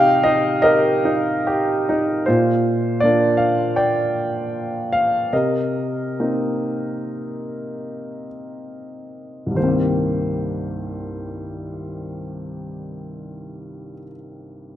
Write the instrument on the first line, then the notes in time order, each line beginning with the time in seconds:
grand piano
Already playing: C3 D#4 G4 D#5 F5 G5
0.23 D#4 D#5
0.62 G4 A#4 D#5
1.05 D#4
1.47 G4
1.89 D#4
2.26 A#2 F4 C5
3.00 A#3 D4 F4 D5
3.37 F5
3.76 D5 G5
4.93 F5
5.33 C3 A#4 D#5
6.20 A#3 C4 D#4
9.46 C2
9.51 G2
9.55 D#3 C5
9.59 A#3
9.64 C4
9.69 G4